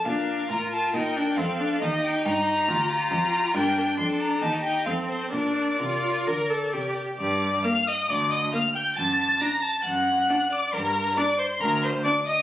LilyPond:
<<
  \new Staff \with { instrumentName = "Violin" } { \time 4/4 \key bes \major \tempo 4 = 136 f''4 bes''8 a''8 g''4 f''4 | ees''8 g''8 bes''2 bes''4 | g''4 c'''8 bes''8 a''8 g''8 f''8 c''8 | d''2.~ d''8 r8 |
\key g \minor d'''4 f'''8 ees'''8 d'''8 ees'''8 f'''8 g'''8 | a'''4 bes'''8 a'''8 fis'''4. d'''8 | bes''4 d'''8 c'''8 bes''8 c'''8 d'''8 ees'''8 | }
  \new Staff \with { instrumentName = "Violin" } { \time 4/4 \key bes \major bes'2 bes'4 a'4 | g'4 g'2. | bes'8 bes'8 a'4 g'4 a'4 | bes'2.~ bes'8 r8 |
\key g \minor d''4 f''8 ees''8 d''8 ees''8 f''8 g''8 | a''4 bes''8 a''8 fis''4. d''8 | bes'4 d''8 c''8 bes'8 c''8 d''8 ees''8 | }
  \new Staff \with { instrumentName = "Viola" } { \time 4/4 \key bes \major d'4 f'4 ees'8 d'8 c'8 d'8 | ees'2 f'8 f'4. | d'4 d'4 ees'4 c'4 | d'4 f'4 bes'8 a'8 g'4 |
\key g \minor r4 bes4 r4 bes4 | r4 d'4 r4 d'4 | r4 d'4 r4 d'4 | }
  \new Staff \with { instrumentName = "Cello" } { \clef bass \time 4/4 \key bes \major bes,4 a,4 bes,4 f,4 | ees,4 g,4 d,4 f,4 | g,4 f,4 ees,4 f,4 | bes,4 c4 d4 c4 |
\key g \minor g,4 r4 d,4 r4 | fis,4 r4 fis,4 r4 | g,4 r4 d,4 r4 | }
>>